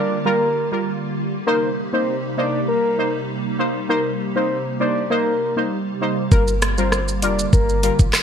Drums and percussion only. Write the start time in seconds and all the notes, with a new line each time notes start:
6.32 kick, shaker
6.48 shaker
6.62 cross-stick, closed hi-hat, shaker
6.78 shaker
6.92 cross-stick, shaker
7.08 shaker
7.22 closed hi-hat, shaker
7.39 shaker
7.53 kick, shaker
7.69 shaker
7.83 closed hi-hat, shaker
7.99 kick, shaker
8.13 cross-stick, clap, shaker